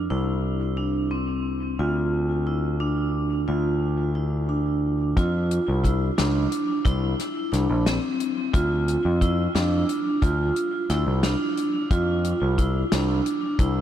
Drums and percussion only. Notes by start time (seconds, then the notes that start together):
5.17 kick, closed hi-hat
5.51 closed hi-hat
5.84 kick, closed hi-hat
6.18 snare, closed hi-hat
6.52 closed hi-hat
6.85 kick, closed hi-hat
7.19 snare, closed hi-hat
7.53 snare, closed hi-hat
7.86 snare, closed hi-hat
8.20 closed hi-hat
8.54 kick, closed hi-hat
8.88 closed hi-hat
9.21 kick, closed hi-hat
9.55 snare, closed hi-hat
9.89 closed hi-hat
10.22 kick, closed hi-hat
10.56 closed hi-hat
10.90 snare, closed hi-hat
11.23 snare, closed hi-hat
11.57 closed hi-hat
11.91 kick, closed hi-hat
12.24 closed hi-hat
12.58 kick, closed hi-hat
12.92 snare, closed hi-hat
13.26 closed hi-hat
13.59 kick, closed hi-hat